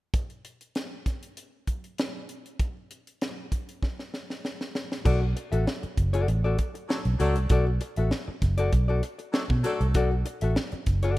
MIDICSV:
0, 0, Header, 1, 7, 480
1, 0, Start_track
1, 0, Key_signature, 2, "minor"
1, 0, Tempo, 612870
1, 107, Time_signature, 4, 2, 24, 8
1, 8761, End_track
2, 0, Start_track
2, 0, Title_t, "Hollow-body jazz guitar"
2, 0, Program_c, 0, 26
2, 3955, Note_on_c, 0, 66, 76
2, 3957, Note_on_c, 0, 69, 85
2, 3965, Note_on_c, 0, 74, 88
2, 4074, Note_off_c, 0, 74, 0
2, 4084, Note_off_c, 0, 69, 0
2, 4100, Note_off_c, 0, 66, 0
2, 4321, Note_on_c, 0, 76, 65
2, 4325, Note_on_c, 0, 69, 68
2, 4332, Note_on_c, 0, 66, 60
2, 4424, Note_off_c, 0, 76, 0
2, 4426, Note_off_c, 0, 69, 0
2, 4429, Note_off_c, 0, 66, 0
2, 4802, Note_on_c, 0, 74, 94
2, 4810, Note_on_c, 0, 69, 80
2, 4815, Note_on_c, 0, 66, 70
2, 4910, Note_off_c, 0, 66, 0
2, 4915, Note_off_c, 0, 69, 0
2, 4920, Note_off_c, 0, 74, 0
2, 5046, Note_on_c, 0, 74, 68
2, 5051, Note_on_c, 0, 69, 64
2, 5057, Note_on_c, 0, 66, 58
2, 5148, Note_off_c, 0, 66, 0
2, 5150, Note_off_c, 0, 69, 0
2, 5154, Note_off_c, 0, 74, 0
2, 5637, Note_on_c, 0, 66, 75
2, 5642, Note_on_c, 0, 69, 69
2, 5650, Note_on_c, 0, 74, 75
2, 5751, Note_off_c, 0, 66, 0
2, 5754, Note_off_c, 0, 69, 0
2, 5755, Note_off_c, 0, 74, 0
2, 5879, Note_on_c, 0, 66, 84
2, 5886, Note_on_c, 0, 69, 96
2, 5893, Note_on_c, 0, 74, 94
2, 5994, Note_off_c, 0, 74, 0
2, 6000, Note_off_c, 0, 69, 0
2, 6022, Note_off_c, 0, 66, 0
2, 6245, Note_on_c, 0, 76, 62
2, 6251, Note_on_c, 0, 69, 55
2, 6255, Note_on_c, 0, 66, 52
2, 6346, Note_off_c, 0, 76, 0
2, 6348, Note_off_c, 0, 69, 0
2, 6350, Note_off_c, 0, 66, 0
2, 6717, Note_on_c, 0, 74, 100
2, 6726, Note_on_c, 0, 69, 75
2, 6732, Note_on_c, 0, 66, 66
2, 6824, Note_off_c, 0, 66, 0
2, 6830, Note_off_c, 0, 69, 0
2, 6833, Note_off_c, 0, 74, 0
2, 6956, Note_on_c, 0, 74, 71
2, 6965, Note_on_c, 0, 69, 68
2, 6971, Note_on_c, 0, 66, 58
2, 7063, Note_off_c, 0, 66, 0
2, 7066, Note_off_c, 0, 69, 0
2, 7072, Note_off_c, 0, 74, 0
2, 7554, Note_on_c, 0, 66, 63
2, 7563, Note_on_c, 0, 69, 61
2, 7568, Note_on_c, 0, 74, 75
2, 7669, Note_off_c, 0, 66, 0
2, 7673, Note_off_c, 0, 69, 0
2, 7676, Note_off_c, 0, 74, 0
2, 7795, Note_on_c, 0, 66, 89
2, 7802, Note_on_c, 0, 69, 94
2, 7805, Note_on_c, 0, 74, 86
2, 7910, Note_off_c, 0, 74, 0
2, 7919, Note_off_c, 0, 69, 0
2, 7939, Note_off_c, 0, 66, 0
2, 8160, Note_on_c, 0, 76, 58
2, 8167, Note_on_c, 0, 69, 49
2, 8174, Note_on_c, 0, 66, 51
2, 8262, Note_off_c, 0, 76, 0
2, 8266, Note_off_c, 0, 69, 0
2, 8267, Note_off_c, 0, 66, 0
2, 8637, Note_on_c, 0, 74, 86
2, 8645, Note_on_c, 0, 69, 69
2, 8649, Note_on_c, 0, 66, 77
2, 8740, Note_off_c, 0, 66, 0
2, 8746, Note_off_c, 0, 69, 0
2, 8750, Note_off_c, 0, 74, 0
2, 8761, End_track
3, 0, Start_track
3, 0, Title_t, "Horn section"
3, 0, Program_c, 1, 61
3, 5390, Note_on_c, 1, 54, 78
3, 5390, Note_on_c, 1, 57, 86
3, 5390, Note_on_c, 1, 69, 93
3, 5392, Note_on_c, 1, 62, 80
3, 5472, Note_off_c, 1, 54, 0
3, 5472, Note_off_c, 1, 57, 0
3, 5472, Note_off_c, 1, 69, 0
3, 5474, Note_off_c, 1, 62, 0
3, 5628, Note_on_c, 1, 62, 98
3, 5629, Note_on_c, 1, 54, 97
3, 5630, Note_on_c, 1, 57, 92
3, 5630, Note_on_c, 1, 69, 100
3, 5783, Note_off_c, 1, 54, 0
3, 5783, Note_off_c, 1, 62, 0
3, 5784, Note_off_c, 1, 57, 0
3, 5784, Note_off_c, 1, 69, 0
3, 7304, Note_on_c, 1, 62, 93
3, 7305, Note_on_c, 1, 54, 82
3, 7305, Note_on_c, 1, 57, 89
3, 7305, Note_on_c, 1, 69, 97
3, 7388, Note_off_c, 1, 54, 0
3, 7388, Note_off_c, 1, 57, 0
3, 7388, Note_off_c, 1, 62, 0
3, 7388, Note_off_c, 1, 69, 0
3, 7544, Note_on_c, 1, 57, 97
3, 7544, Note_on_c, 1, 69, 105
3, 7546, Note_on_c, 1, 54, 89
3, 7548, Note_on_c, 1, 62, 94
3, 7700, Note_off_c, 1, 57, 0
3, 7700, Note_off_c, 1, 69, 0
3, 7701, Note_off_c, 1, 54, 0
3, 7702, Note_off_c, 1, 62, 0
3, 8761, End_track
4, 0, Start_track
4, 0, Title_t, "Fingered electric bass"
4, 0, Program_c, 2, 33
4, 3961, Note_on_c, 2, 35, 92
4, 4173, Note_off_c, 2, 35, 0
4, 4327, Note_on_c, 2, 33, 85
4, 4425, Note_off_c, 2, 33, 0
4, 4681, Note_on_c, 2, 30, 85
4, 4892, Note_off_c, 2, 30, 0
4, 4918, Note_on_c, 2, 33, 87
4, 5131, Note_off_c, 2, 33, 0
4, 5524, Note_on_c, 2, 35, 89
4, 5624, Note_off_c, 2, 35, 0
4, 5636, Note_on_c, 2, 37, 91
4, 5765, Note_off_c, 2, 37, 0
4, 5765, Note_on_c, 2, 36, 92
4, 5864, Note_off_c, 2, 36, 0
4, 5877, Note_on_c, 2, 35, 97
4, 6090, Note_off_c, 2, 35, 0
4, 6247, Note_on_c, 2, 33, 97
4, 6345, Note_off_c, 2, 33, 0
4, 6593, Note_on_c, 2, 30, 81
4, 6808, Note_off_c, 2, 30, 0
4, 6838, Note_on_c, 2, 35, 90
4, 7050, Note_off_c, 2, 35, 0
4, 7439, Note_on_c, 2, 47, 102
4, 7540, Note_off_c, 2, 47, 0
4, 7679, Note_on_c, 2, 36, 102
4, 7793, Note_off_c, 2, 36, 0
4, 7793, Note_on_c, 2, 35, 95
4, 8007, Note_off_c, 2, 35, 0
4, 8162, Note_on_c, 2, 33, 89
4, 8262, Note_off_c, 2, 33, 0
4, 8512, Note_on_c, 2, 30, 89
4, 8752, Note_off_c, 2, 30, 0
4, 8761, End_track
5, 0, Start_track
5, 0, Title_t, "Muted fingered electric bass strokes"
5, 4569, Note_on_c, 9, 29, 43
5, 4648, Note_off_c, 9, 29, 0
5, 6484, Note_on_c, 9, 29, 40
5, 6563, Note_off_c, 9, 29, 0
5, 8401, Note_on_c, 9, 29, 43
5, 8480, Note_off_c, 9, 29, 0
5, 8761, End_track
6, 0, Start_track
6, 0, Title_t, "Muted hollow-body jazz guitar strokes"
6, 4084, Note_on_c, 9, 29, 35
6, 4162, Note_off_c, 9, 29, 0
6, 4199, Note_on_c, 9, 29, 38
6, 4278, Note_off_c, 9, 29, 0
6, 4438, Note_on_c, 9, 29, 45
6, 4516, Note_off_c, 9, 29, 0
6, 4565, Note_on_c, 9, 29, 41
6, 4643, Note_off_c, 9, 29, 0
6, 4919, Note_on_c, 9, 29, 43
6, 4997, Note_off_c, 9, 29, 0
6, 5157, Note_on_c, 9, 29, 38
6, 5236, Note_off_c, 9, 29, 0
6, 5283, Note_on_c, 9, 29, 39
6, 5361, Note_off_c, 9, 29, 0
6, 5398, Note_on_c, 9, 29, 37
6, 5476, Note_off_c, 9, 29, 0
6, 5764, Note_on_c, 9, 29, 44
6, 5843, Note_off_c, 9, 29, 0
6, 6004, Note_on_c, 9, 29, 51
6, 6082, Note_off_c, 9, 29, 0
6, 6116, Note_on_c, 9, 29, 45
6, 6194, Note_off_c, 9, 29, 0
6, 6362, Note_on_c, 9, 29, 42
6, 6440, Note_off_c, 9, 29, 0
6, 6483, Note_on_c, 9, 29, 47
6, 6561, Note_off_c, 9, 29, 0
6, 6834, Note_on_c, 9, 29, 36
6, 6912, Note_off_c, 9, 29, 0
6, 7072, Note_on_c, 9, 29, 38
6, 7150, Note_off_c, 9, 29, 0
6, 7194, Note_on_c, 9, 29, 46
6, 7272, Note_off_c, 9, 29, 0
6, 7316, Note_on_c, 9, 29, 35
6, 7395, Note_off_c, 9, 29, 0
6, 7688, Note_on_c, 9, 29, 40
6, 7767, Note_off_c, 9, 29, 0
6, 7919, Note_on_c, 9, 29, 44
6, 7998, Note_off_c, 9, 29, 0
6, 8031, Note_on_c, 9, 29, 50
6, 8109, Note_off_c, 9, 29, 0
6, 8276, Note_on_c, 9, 29, 49
6, 8355, Note_off_c, 9, 29, 0
6, 8400, Note_on_c, 9, 29, 46
6, 8478, Note_off_c, 9, 29, 0
6, 8761, End_track
7, 0, Start_track
7, 0, Title_t, "Drums"
7, 107, Note_on_c, 9, 36, 104
7, 107, Note_on_c, 9, 42, 78
7, 186, Note_off_c, 9, 36, 0
7, 186, Note_off_c, 9, 42, 0
7, 234, Note_on_c, 9, 42, 28
7, 313, Note_off_c, 9, 42, 0
7, 350, Note_on_c, 9, 42, 76
7, 429, Note_off_c, 9, 42, 0
7, 477, Note_on_c, 9, 42, 47
7, 555, Note_off_c, 9, 42, 0
7, 590, Note_on_c, 9, 42, 74
7, 593, Note_on_c, 9, 38, 88
7, 668, Note_off_c, 9, 42, 0
7, 672, Note_off_c, 9, 38, 0
7, 830, Note_on_c, 9, 36, 79
7, 834, Note_on_c, 9, 42, 64
7, 841, Note_on_c, 9, 38, 29
7, 909, Note_off_c, 9, 36, 0
7, 912, Note_off_c, 9, 42, 0
7, 919, Note_off_c, 9, 38, 0
7, 961, Note_on_c, 9, 42, 54
7, 1039, Note_off_c, 9, 42, 0
7, 1073, Note_on_c, 9, 42, 85
7, 1152, Note_off_c, 9, 42, 0
7, 1311, Note_on_c, 9, 42, 67
7, 1312, Note_on_c, 9, 36, 72
7, 1389, Note_off_c, 9, 42, 0
7, 1390, Note_off_c, 9, 36, 0
7, 1442, Note_on_c, 9, 42, 46
7, 1520, Note_off_c, 9, 42, 0
7, 1554, Note_on_c, 9, 42, 77
7, 1562, Note_on_c, 9, 38, 107
7, 1632, Note_off_c, 9, 42, 0
7, 1640, Note_off_c, 9, 38, 0
7, 1794, Note_on_c, 9, 42, 62
7, 1872, Note_off_c, 9, 42, 0
7, 1925, Note_on_c, 9, 42, 50
7, 2003, Note_off_c, 9, 42, 0
7, 2032, Note_on_c, 9, 36, 95
7, 2034, Note_on_c, 9, 42, 75
7, 2111, Note_off_c, 9, 36, 0
7, 2112, Note_off_c, 9, 42, 0
7, 2277, Note_on_c, 9, 42, 84
7, 2355, Note_off_c, 9, 42, 0
7, 2406, Note_on_c, 9, 42, 47
7, 2485, Note_off_c, 9, 42, 0
7, 2518, Note_on_c, 9, 42, 73
7, 2521, Note_on_c, 9, 38, 100
7, 2596, Note_off_c, 9, 42, 0
7, 2600, Note_off_c, 9, 38, 0
7, 2756, Note_on_c, 9, 36, 71
7, 2756, Note_on_c, 9, 42, 66
7, 2834, Note_off_c, 9, 36, 0
7, 2835, Note_off_c, 9, 42, 0
7, 2889, Note_on_c, 9, 42, 54
7, 2967, Note_off_c, 9, 42, 0
7, 2996, Note_on_c, 9, 36, 75
7, 3001, Note_on_c, 9, 38, 50
7, 3074, Note_off_c, 9, 36, 0
7, 3080, Note_off_c, 9, 38, 0
7, 3128, Note_on_c, 9, 38, 46
7, 3206, Note_off_c, 9, 38, 0
7, 3241, Note_on_c, 9, 38, 62
7, 3319, Note_off_c, 9, 38, 0
7, 3370, Note_on_c, 9, 38, 56
7, 3448, Note_off_c, 9, 38, 0
7, 3484, Note_on_c, 9, 38, 75
7, 3562, Note_off_c, 9, 38, 0
7, 3610, Note_on_c, 9, 38, 68
7, 3688, Note_off_c, 9, 38, 0
7, 3722, Note_on_c, 9, 38, 87
7, 3800, Note_off_c, 9, 38, 0
7, 3852, Note_on_c, 9, 38, 75
7, 3930, Note_off_c, 9, 38, 0
7, 3959, Note_on_c, 9, 36, 98
7, 3961, Note_on_c, 9, 49, 90
7, 4037, Note_off_c, 9, 36, 0
7, 4039, Note_off_c, 9, 49, 0
7, 4203, Note_on_c, 9, 42, 84
7, 4282, Note_off_c, 9, 42, 0
7, 4328, Note_on_c, 9, 42, 52
7, 4406, Note_off_c, 9, 42, 0
7, 4444, Note_on_c, 9, 38, 95
7, 4522, Note_off_c, 9, 38, 0
7, 4569, Note_on_c, 9, 42, 32
7, 4647, Note_off_c, 9, 42, 0
7, 4679, Note_on_c, 9, 36, 79
7, 4680, Note_on_c, 9, 42, 70
7, 4757, Note_off_c, 9, 36, 0
7, 4758, Note_off_c, 9, 42, 0
7, 4807, Note_on_c, 9, 42, 59
7, 4885, Note_off_c, 9, 42, 0
7, 4921, Note_on_c, 9, 42, 82
7, 4999, Note_off_c, 9, 42, 0
7, 5158, Note_on_c, 9, 42, 80
7, 5160, Note_on_c, 9, 36, 77
7, 5236, Note_off_c, 9, 42, 0
7, 5238, Note_off_c, 9, 36, 0
7, 5288, Note_on_c, 9, 42, 46
7, 5366, Note_off_c, 9, 42, 0
7, 5407, Note_on_c, 9, 38, 110
7, 5485, Note_off_c, 9, 38, 0
7, 5522, Note_on_c, 9, 42, 36
7, 5601, Note_off_c, 9, 42, 0
7, 5639, Note_on_c, 9, 42, 70
7, 5717, Note_off_c, 9, 42, 0
7, 5763, Note_on_c, 9, 42, 52
7, 5841, Note_off_c, 9, 42, 0
7, 5870, Note_on_c, 9, 42, 86
7, 5874, Note_on_c, 9, 36, 109
7, 5948, Note_off_c, 9, 42, 0
7, 5953, Note_off_c, 9, 36, 0
7, 6114, Note_on_c, 9, 42, 83
7, 6192, Note_off_c, 9, 42, 0
7, 6238, Note_on_c, 9, 42, 51
7, 6316, Note_off_c, 9, 42, 0
7, 6353, Note_on_c, 9, 38, 88
7, 6431, Note_off_c, 9, 38, 0
7, 6594, Note_on_c, 9, 36, 81
7, 6594, Note_on_c, 9, 42, 65
7, 6602, Note_on_c, 9, 38, 34
7, 6672, Note_off_c, 9, 36, 0
7, 6673, Note_off_c, 9, 42, 0
7, 6680, Note_off_c, 9, 38, 0
7, 6717, Note_on_c, 9, 42, 57
7, 6796, Note_off_c, 9, 42, 0
7, 6834, Note_on_c, 9, 36, 88
7, 6834, Note_on_c, 9, 42, 87
7, 6912, Note_off_c, 9, 36, 0
7, 6912, Note_off_c, 9, 42, 0
7, 7072, Note_on_c, 9, 42, 81
7, 7150, Note_off_c, 9, 42, 0
7, 7197, Note_on_c, 9, 42, 50
7, 7276, Note_off_c, 9, 42, 0
7, 7313, Note_on_c, 9, 38, 110
7, 7392, Note_off_c, 9, 38, 0
7, 7440, Note_on_c, 9, 36, 100
7, 7518, Note_off_c, 9, 36, 0
7, 7551, Note_on_c, 9, 42, 67
7, 7630, Note_off_c, 9, 42, 0
7, 7682, Note_on_c, 9, 42, 49
7, 7760, Note_off_c, 9, 42, 0
7, 7789, Note_on_c, 9, 42, 95
7, 7792, Note_on_c, 9, 36, 112
7, 7867, Note_off_c, 9, 42, 0
7, 7871, Note_off_c, 9, 36, 0
7, 8033, Note_on_c, 9, 42, 90
7, 8111, Note_off_c, 9, 42, 0
7, 8155, Note_on_c, 9, 42, 55
7, 8233, Note_off_c, 9, 42, 0
7, 8272, Note_on_c, 9, 38, 102
7, 8350, Note_off_c, 9, 38, 0
7, 8395, Note_on_c, 9, 42, 35
7, 8473, Note_off_c, 9, 42, 0
7, 8508, Note_on_c, 9, 42, 61
7, 8511, Note_on_c, 9, 36, 81
7, 8516, Note_on_c, 9, 38, 32
7, 8587, Note_off_c, 9, 42, 0
7, 8589, Note_off_c, 9, 36, 0
7, 8594, Note_off_c, 9, 38, 0
7, 8636, Note_on_c, 9, 42, 58
7, 8714, Note_off_c, 9, 42, 0
7, 8761, End_track
0, 0, End_of_file